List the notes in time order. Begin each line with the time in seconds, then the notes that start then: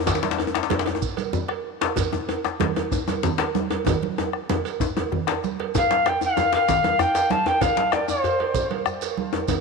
0.00 djembe tone
0.06 bombo low, cowbell, djembe slap, djembe tone, high conga, djembe bass, low conga, shekere
0.15 djembe slap
0.23 bombo rim, djembe slap, high conga
0.31 djembe slap
0.38 bombo rim, cowbell, djembe tone
0.47 djembe tone
0.55 bombo rim, djembe slap, high conga
0.63 djembe slap
0.70 cowbell, djembe slap, high conga, djembe tone, low conga, djembe bass
0.79 djembe slap
0.86 cowbell, djembe slap, djembe tone
0.95 djembe tone
1.02 bombo rim, bombo low, shekere
1.17 bombo rim, cowbell, high conga, shekere
1.33 djembe tone, low conga, djembe bass, shekere
1.48 bombo rim, cowbell, djembe slap
1.81 cowbell, djembe slap
1.96 bombo low, cowbell, djembe tone, high conga, djembe bass, low conga, shekere
2.12 bombo rim, djembe slap, high conga, djembe tone
2.28 bombo rim, cowbell, high conga, djembe tone
2.44 bombo rim, djembe slap, high conga
2.60 cowbell, djembe slap, high conga, djembe tone, low conga, djembe bass
2.76 cowbell, djembe slap, djembe tone
2.92 bombo rim, bombo low, djembe tone, shekere
3.08 bombo rim, cowbell, high conga, djembe tone, shekere
3.23 djembe slap, djembe tone, low conga, djembe bass, shekere
3.38 bombo rim, cowbell, djembe slap
3.40 djembe slap
3.55 djembe tone, high conga
3.70 cowbell, djembe tone
3.86 bombo low, cowbell, djembe tone, low conga, djembe bass, shekere
4.02 djembe slap, high conga
4.18 bombo rim, cowbell, djembe tone
4.33 bombo rim
4.50 cowbell, high conga, djembe tone, low conga, djembe bass
4.65 cowbell, shekere
4.80 bombo rim, bombo low, djembe tone, shekere
4.97 cowbell, djembe tone, high conga
5.12 bombo rim, djembe tone, djembe bass, low conga
5.27 bombo rim, cowbell, djembe slap, djembe bass
5.44 bombo rim, djembe slap, high conga, shekere
5.60 cowbell, djembe slap
5.75 F5, bombo low, cowbell, djembe slap, djembe tone, low conga, djembe bass, shekere
5.91 djembe slap, high conga
6.06 G5, bombo rim, cowbell, djembe slap, djembe tone
6.21 F5, bombo rim, djembe tone, shekere
6.37 cowbell, djembe tone, high conga, djembe bass, shekere
6.53 F5, bombo rim, cowbell, djembe slap, high conga, djembe tone
6.69 bombo rim, bombo low, djembe slap, low conga, shekere
6.84 cowbell, high conga, djembe tone
6.99 G5, bombo rim, djembe slap, djembe tone, djembe bass, shekere
7.15 cowbell, djembe slap, shekere
7.30 A5, djembe slap, high conga
7.46 G5, cowbell, djembe tone
7.61 F5, bombo low, cowbell, djembe slap, djembe tone, djembe bass, low conga, shekere
7.76 djembe slap, high conga
7.92 D5, bombo rim, cowbell, djembe slap, djembe tone
8.08 C5, bombo rim, djembe tone, shekere
8.24 cowbell, djembe bass, shekere
8.39 bombo rim, cowbell, high conga, djembe tone
8.54 bombo rim, bombo low, low conga, shekere
8.71 cowbell, high conga
8.86 bombo rim, djembe slap, djembe tone, shekere
9.01 cowbell, djembe slap, shekere
9.17 high conga
9.33 cowbell, djembe tone
9.48 bombo low, cowbell, djembe slap, djembe tone, low conga, djembe bass, shekere